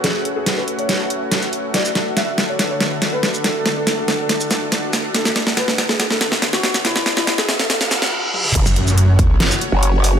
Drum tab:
CC |----------------|----------------|----------------|----------------|
HH |x-x-x-xxx-x-xxx-|x-x-x-x-x-x-x-x-|x-x-x-x-x-x-x-x-|x-x-x-x-x-x-x-x-|
SH |----------------|-x-------------x|---------xx---x-|-x-------------x|
SD |o---o---o---o---|o-o-o-o-o-o-o-o-|o-o-o-o-o-o-o-o-|oooooooooooooooo|
T1 |----------------|----------------|----------------|----------------|
T2 |----------------|----------------|----------------|----------------|
BD |----------------|----------------|----------------|----------------|

CC |----------------|x---------------|
HH |x-x-x-xxx-x-----|x-x-x-x-x-x-x-o-|
SH |---------xx-----|-x-x-----x----x-|
SD |oooooooooooo----|--------o-------|
T1 |--------------o-|----------------|
T2 |---------------o|----------------|
BD |----------------|o-----o---------|